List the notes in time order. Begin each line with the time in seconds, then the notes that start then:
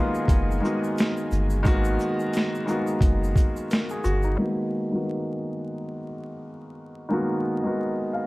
Already playing: D#3 G#3 A#3 B3 F#4 G#4 D#5 G#5 B5
0.00 F4
0.15 shaker
0.28 F#1, kick, closed hi-hat, shaker
0.51 shaker
0.60 D#3 G#3 A#3 B3
0.65 F#4, shaker
0.84 shaker
0.98 snare, closed hi-hat, shaker
1.17 shaker
1.31 G1, shaker
1.50 shaker
1.63 G#1 D#3 G#3 A#3 B3, kick, closed hi-hat, shaker
1.67 F#4
1.85 shaker
1.99 shaker
2.20 shaker
2.33 snare, closed hi-hat, shaker
2.55 shaker
2.66 D#3 G#3 A#3 B3, shaker
2.70 F#4
2.87 shaker
3.01 F#1, kick, closed hi-hat, shaker
3.24 shaker
3.36 kick, closed hi-hat, shaker
3.56 shaker
3.71 A#4, snare, closed hi-hat, shaker
3.89 G#4, shaker
4.04 G1 F#4, shaker
4.22 D#4, shaker
4.37 D#3 G#3 A#3 B3
4.41 F#4
4.91 D#3 G#3 A#3 B3
4.96 F#4
7.09 D#3 G#3 A#3 B3
7.13 F#4
7.63 D#3 G#3 A#3 B3
7.67 F#4
8.13 F5